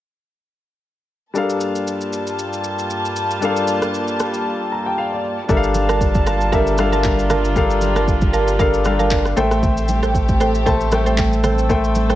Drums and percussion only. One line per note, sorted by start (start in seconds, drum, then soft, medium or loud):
1.35 shaker medium
1.50 shaker medium
1.61 shaker medium
1.75 shaker medium
1.87 shaker medium
2.01 shaker soft
2.13 shaker medium
2.27 shaker medium
2.39 shaker medium
2.53 shaker soft
2.64 shaker medium
2.79 shaker medium
2.90 shaker medium
3.05 shaker medium
3.16 shaker medium
3.31 shaker soft
3.42 shaker medium
3.57 shaker medium
3.68 shaker medium
3.82 cross-stick medium
3.82 shaker medium
3.94 shaker medium
4.08 shaker soft
4.20 cross-stick medium
4.20 shaker medium
4.34 shaker medium
5.49 kick loud
5.49 low conga medium
5.49 shaker medium
5.64 shaker medium
5.75 high conga medium
5.75 shaker medium
5.89 cross-stick medium
5.89 high conga medium
5.89 shaker medium
6.01 kick medium
6.01 shaker medium
6.15 kick loud
6.15 high conga medium
6.15 shaker medium
6.27 cross-stick medium
6.27 shaker medium
6.41 shaker medium
6.53 kick loud
6.53 low conga medium
6.53 shaker medium
6.67 shaker soft
6.78 cross-stick loud
6.78 high conga medium
6.78 shaker medium
6.93 high conga medium
6.93 shaker medium
7.04 kick medium
7.04 clap medium
7.04 shaker medium
7.19 shaker medium
7.30 cross-stick loud
7.30 high conga medium
7.30 low conga medium
7.30 shaker medium
7.45 shaker medium
7.56 kick loud
7.56 low conga medium
7.56 shaker medium
7.70 shaker medium
7.81 high conga medium
7.81 shaker medium
7.96 cross-stick medium
7.96 high conga medium
7.96 shaker medium
8.08 kick medium
8.08 shaker medium
8.21 kick medium
8.21 high conga medium
8.21 shaker soft
8.34 shaker medium
8.48 shaker medium
8.60 kick loud
8.60 low conga medium
8.60 shaker medium
8.74 shaker soft
8.85 cross-stick medium
8.85 high conga medium
8.85 shaker medium
8.99 high conga medium
8.99 shaker medium
9.11 kick medium
9.11 clap medium
9.11 shaker medium
9.25 cross-stick medium
9.25 shaker medium
9.37 high conga medium
9.37 low conga medium
9.37 shaker medium
9.51 cross-stick medium
9.51 shaker medium
9.63 kick loud
9.63 low conga medium
9.63 shaker medium
9.77 shaker medium
9.88 high conga medium
9.88 shaker loud
10.03 cross-stick medium
10.03 high conga medium
10.03 shaker medium
10.15 kick medium
10.15 shaker medium
10.29 kick loud
10.29 high conga medium
10.29 shaker medium
10.41 cross-stick medium
10.41 shaker medium
10.55 shaker medium
10.66 kick loud
10.66 low conga medium
10.66 shaker medium
10.81 shaker soft
10.92 cross-stick loud
10.92 high conga medium
10.92 shaker medium
11.06 high conga medium
11.06 shaker medium
11.18 kick medium
11.18 clap medium
11.18 shaker medium
11.33 shaker medium
11.44 cross-stick medium
11.44 high conga medium
11.44 low conga medium
11.44 shaker medium
11.58 shaker medium
11.70 kick loud
11.70 low conga medium
11.70 shaker medium
11.84 shaker medium
11.95 high conga medium
11.95 shaker medium
12.10 cross-stick medium
12.10 high conga medium
12.10 shaker medium